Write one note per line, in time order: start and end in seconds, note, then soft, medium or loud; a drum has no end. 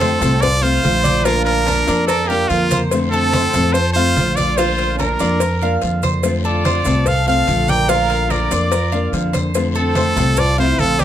0.00 0.15 F2 medium
0.00 0.20 D3 soft
0.00 0.21 A3 soft
0.00 0.38 C4 loud
0.00 0.21 C4 medium
0.00 0.20 F4 medium
0.00 0.43 A4 loud
0.00 0.21 C5 medium
0.00 cowbell medium
0.00 high conga medium
0.00 short guiro medium
0.00 maracas soft
0.21 0.80 C2 medium
0.21 0.41 A3 medium
0.21 0.41 C4 medium
0.21 0.41 F4 medium
0.21 0.62 A4 medium
0.21 cowbell medium
0.21 high conga soft
0.21 low conga medium
0.21 short guiro medium
0.21 maracas medium
0.41 0.61 F4 medium
0.41 0.64 D5 loud
0.41 muted nylon-string guitar stroke medium
0.41 cowbell loud
0.41 high conga soft
0.41 low conga medium
0.41 long guiro medium
0.41 maracas medium
0.62 0.82 A3 medium
0.62 0.83 C4 medium
0.62 0.82 F4 medium
0.62 1.25 F4 medium
0.62 1.27 C5 loud
0.62 1.03 F5 medium
0.62 high conga soft
0.62 maracas soft
0.82 1.82 A#1 medium
0.82 1.23 D3 medium
0.82 1.24 A3 medium
0.82 1.25 C4 medium
0.82 1.25 F4 medium
0.82 cowbell medium
0.82 high conga medium
0.82 short guiro medium
0.82 maracas soft
1.04 1.24 D5 medium
1.04 cowbell medium
1.04 high conga medium
1.04 short guiro medium
1.04 maracas medium
1.24 1.65 D3 medium
1.24 1.66 A#3 medium
1.24 1.43 D4 medium
1.24 1.66 D4 medium
1.24 1.66 F4 medium
1.24 1.67 F4 medium
1.24 1.45 A#4 loud
1.24 cowbell loud
1.24 high conga soft
1.24 long guiro medium
1.24 maracas medium
1.45 2.04 D4 loud
1.45 2.04 A#4 loud
1.45 cowbell medium
1.45 high conga soft
1.45 maracas soft
1.66 1.86 D3 soft
1.66 1.87 A#3 medium
1.66 1.87 D4 medium
1.66 1.86 F4 medium
1.66 1.88 A#4 medium
1.66 cowbell medium
1.66 high conga medium
1.66 short guiro medium
1.66 maracas soft
1.87 2.46 F2 medium
1.87 2.07 A#3 medium
1.87 2.08 D4 medium
1.87 2.07 F4 medium
1.87 2.08 D5 medium
1.87 cowbell medium
1.87 high conga soft
1.87 short guiro medium
1.87 maracas medium
2.05 2.26 D4 medium
2.05 2.30 A4 loud
2.05 2.29 A#4 medium
2.05 muted nylon-string guitar stroke medium
2.05 cowbell loud
2.05 long guiro medium
2.05 maracas medium
2.10 high conga soft
2.27 2.48 A#3 medium
2.27 2.49 A#3 medium
2.27 2.50 D4 medium
2.27 2.49 F4 medium
2.27 2.50 G4 loud
2.27 2.70 F5 medium
2.27 high conga soft
2.27 maracas soft
2.49 3.48 F2 medium
2.49 2.90 D3 medium
2.49 2.81 A#3 medium
2.49 2.91 A#3 medium
2.49 2.91 D4 medium
2.49 2.81 F4 loud
2.49 2.92 F4 medium
2.49 cowbell medium
2.49 high conga soft
2.49 short guiro medium
2.49 maracas soft
2.70 3.11 C5 medium
2.70 cowbell medium
2.70 high conga medium
2.70 short guiro medium
2.70 maracas medium
2.91 3.32 D3 medium
2.91 3.33 A3 medium
2.91 3.33 C4 medium
2.91 3.33 F4 medium
2.91 cowbell loud
2.91 long guiro medium
2.91 maracas loud
3.10 3.70 C4 loud
3.10 3.75 A4 loud
3.10 3.33 A4 medium
3.10 high conga soft
3.10 maracas soft
3.33 3.53 D3 soft
3.33 3.53 A3 medium
3.33 3.54 C4 soft
3.33 3.53 F4 medium
3.33 3.54 C5 medium
3.33 cowbell medium
3.33 high conga loud
3.33 short guiro medium
3.33 maracas soft
3.53 4.12 F2 medium
3.53 3.74 A3 medium
3.53 3.74 C4 medium
3.53 3.74 F4 medium
3.53 3.94 A4 medium
3.53 cowbell medium
3.53 high conga soft
3.53 low conga medium
3.53 short guiro medium
3.53 maracas medium
3.72 3.92 F4 medium
3.72 3.93 C5 loud
3.72 muted nylon-string guitar stroke medium
3.72 cowbell loud
3.72 high conga soft
3.72 long guiro medium
3.72 maracas medium
3.93 4.16 C4 medium
3.93 4.33 F4 medium
3.93 4.15 F4 medium
3.93 4.38 C5 loud
3.93 4.36 F5 medium
3.93 high conga soft
3.93 maracas soft
3.98 4.17 A3 medium
4.16 5.13 A#1 medium
4.16 4.57 D3 medium
4.16 4.57 A3 medium
4.16 4.58 C4 medium
4.16 4.58 F4 medium
4.16 cowbell medium
4.16 high conga medium
4.16 short guiro medium
4.16 maracas soft
4.35 4.55 F4 medium
4.35 4.59 D5 medium
4.35 4.57 D5 medium
4.35 cowbell medium
4.35 high conga medium
4.35 short guiro medium
4.35 maracas medium
4.56 4.98 D3 medium
4.56 4.99 A#3 medium
4.56 4.99 D4 medium
4.56 4.98 F4 medium
4.56 4.99 C5 loud
4.56 cowbell loud
4.56 high conga soft
4.56 long guiro medium
4.56 maracas medium
4.61 5.00 F4 medium
4.78 cowbell medium
4.78 high conga soft
4.78 maracas soft
4.98 5.19 D3 medium
4.98 5.19 A#3 medium
4.98 5.77 D4 medium
4.98 5.20 D4 medium
4.98 5.19 F4 medium
4.98 5.78 A#4 medium
4.98 5.19 A#4 medium
4.98 cowbell medium
4.98 high conga medium
4.98 short guiro medium
4.98 maracas soft
5.19 5.78 F2 medium
5.19 5.41 A#3 medium
5.19 5.41 D4 medium
5.19 5.40 F4 medium
5.19 5.40 D5 medium
5.19 cowbell medium
5.19 high conga soft
5.19 short guiro medium
5.19 maracas medium
5.40 5.61 A#4 medium
5.40 muted nylon-string guitar stroke medium
5.40 cowbell loud
5.40 high conga soft
5.40 long guiro medium
5.40 maracas medium
5.61 5.82 A#3 medium
5.61 5.82 D4 medium
5.61 5.81 F4 medium
5.61 6.02 F5 medium
5.61 high conga soft
5.61 maracas soft
5.82 6.80 F2 medium
5.82 6.22 D3 soft
5.82 6.23 A#3 medium
5.82 6.24 D4 medium
5.82 6.24 F4 medium
5.82 cowbell medium
5.82 high conga soft
5.82 short guiro medium
5.82 maracas soft
6.02 6.43 C5 medium
6.02 cowbell medium
6.02 high conga medium
6.02 short guiro medium
6.02 maracas medium
6.23 6.64 D3 medium
6.23 6.64 A3 medium
6.23 6.65 C4 medium
6.23 6.65 F4 medium
6.23 cowbell loud
6.23 high conga soft
6.23 long guiro medium
6.23 maracas loud
6.44 7.04 F4 medium
6.44 6.65 A4 medium
6.44 7.09 D5 medium
6.44 high conga soft
6.44 maracas soft
6.65 6.85 D3 soft
6.65 6.85 A3 medium
6.65 6.85 C4 medium
6.65 6.84 F4 medium
6.65 6.85 C5 medium
6.65 cowbell medium
6.65 high conga medium
6.65 short guiro medium
6.65 maracas soft
6.85 7.44 C2 medium
6.85 7.06 A3 medium
6.85 7.06 C4 medium
6.85 7.05 F4 medium
6.85 7.26 A4 medium
6.85 cowbell medium
6.85 high conga soft
6.85 low conga medium
6.85 short guiro medium
6.85 maracas medium
7.06 7.27 A4 medium
7.06 7.28 F5 loud
7.06 muted nylon-string guitar stroke medium
7.06 cowbell loud
7.06 high conga soft
7.06 low conga medium
7.06 long guiro medium
7.06 maracas medium
7.26 7.47 A3 medium
7.26 7.47 C4 medium
7.26 7.47 F4 medium
7.26 7.66 A4 medium
7.26 7.68 F5 medium
7.26 7.71 F5 loud
7.26 high conga soft
7.26 maracas soft
7.47 8.45 A#1 medium
7.47 7.87 D3 medium
7.47 7.89 A3 medium
7.47 7.89 C4 medium
7.47 7.89 F4 medium
7.47 cowbell medium
7.47 high conga medium
7.47 short guiro medium
7.47 maracas soft
7.68 7.88 A#4 medium
7.68 7.89 D5 medium
7.68 7.91 G5 loud
7.68 cowbell medium
7.68 high conga medium
7.68 short guiro medium
7.68 maracas medium
7.89 8.28 D3 medium
7.89 8.29 A#3 medium
7.89 8.30 D4 medium
7.89 8.29 F4 medium
7.89 8.31 F4 medium
7.89 8.30 A#4 medium
7.89 8.33 F5 loud
7.89 cowbell loud
7.89 long guiro medium
7.89 maracas medium
8.10 cowbell medium
8.10 high conga soft
8.10 maracas soft
8.30 8.50 D3 soft
8.30 8.50 A#3 soft
8.30 8.50 D4 medium
8.30 9.14 F4 medium
8.30 8.49 F4 medium
8.30 8.51 A#4 medium
8.30 9.14 D5 medium
8.30 cowbell medium
8.30 high conga medium
8.30 short guiro medium
8.30 maracas soft
8.51 9.09 F2 medium
8.51 8.71 A#3 medium
8.51 8.71 D4 medium
8.51 8.71 F4 medium
8.51 8.72 D5 medium
8.51 cowbell medium
8.51 high conga soft
8.51 short guiro medium
8.51 maracas medium
8.71 8.92 A#4 medium
8.71 muted nylon-string guitar stroke medium
8.71 cowbell loud
8.71 high conga soft
8.71 long guiro medium
8.71 maracas medium
8.92 9.13 A#3 medium
8.92 9.13 D4 medium
8.92 9.12 F4 medium
8.92 9.33 F5 medium
8.92 high conga soft
8.92 maracas soft
9.12 10.11 F2 medium
9.12 9.53 D3 medium
9.12 9.54 A#3 medium
9.12 9.55 D4 medium
9.12 9.55 F4 medium
9.12 cowbell medium
9.12 high conga soft
9.12 short guiro medium
9.12 maracas soft
9.33 9.74 C5 medium
9.33 cowbell medium
9.33 high conga medium
9.33 short guiro medium
9.33 maracas medium
9.54 9.95 D3 medium
9.54 9.96 A3 medium
9.54 9.96 C4 medium
9.54 9.96 F4 medium
9.54 cowbell loud
9.54 high conga soft
9.54 long guiro medium
9.54 maracas medium
9.75 10.35 C4 medium
9.75 9.96 A4 medium
9.75 10.41 A4 loud
9.75 high conga soft
9.75 maracas soft
9.95 10.16 D3 soft
9.95 10.17 A3 medium
9.95 10.17 C4 medium
9.95 10.16 F4 medium
9.95 10.16 C5 medium
9.95 cowbell medium
9.95 high conga loud
9.95 short guiro medium
9.95 maracas soft
10.16 10.75 C2 loud
10.16 10.37 A3 medium
10.16 10.37 C4 medium
10.16 10.37 F4 medium
10.16 10.57 A4 medium
10.16 cowbell medium
10.16 high conga soft
10.16 low conga medium
10.16 short guiro medium
10.16 maracas medium
10.36 10.59 F4 medium
10.36 10.59 D5 loud
10.36 muted nylon-string guitar stroke medium
10.36 cowbell loud
10.36 high conga soft
10.36 low conga medium
10.36 long guiro medium
10.36 maracas medium
10.58 10.78 A3 medium
10.58 10.79 C4 medium
10.58 10.78 E4 medium
10.58 10.78 F4 medium
10.58 10.81 C5 loud
10.58 10.98 F5 medium
10.58 high conga soft
10.58 maracas soft
10.78 11.04 A#1 medium
10.78 11.04 D3 medium
10.78 11.04 A3 soft
10.78 11.00 C4 medium
10.78 11.04 C4 medium
10.78 11.04 F4 medium
10.78 11.02 A4 loud
10.78 cowbell medium
10.78 high conga medium
10.78 short guiro medium
10.78 maracas soft
10.99 11.04 A#3 medium
10.99 11.04 G4 loud
10.99 11.04 D5 medium
10.99 cowbell medium
10.99 high conga medium
10.99 short guiro medium
10.99 maracas medium